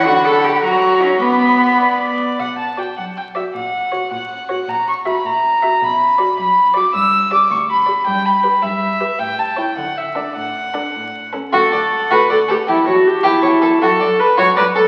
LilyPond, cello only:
\new Staff \with { instrumentName = "Cello" } { \clef bass \time 6/8 \key b \minor \tempo 4. = 105 fis'8 a'8 g'8 fis'4 cis'8 | b2~ b8 r8 | b,4. fis,4. | ais,4. ais,4. |
ais,4. ais,4. | b,4. fis,4. | \key d \major g,4. d,4. | g,4. g,4. |
a,4. d4. | a,4. a,4. | d,8 d,8 r8 d,8 d,8 d,8 | e,8 e,8 r8 e,8 e,8 e,8 |
fis,8 fis,8 r8 fis,8 fis,8 fis,8 | }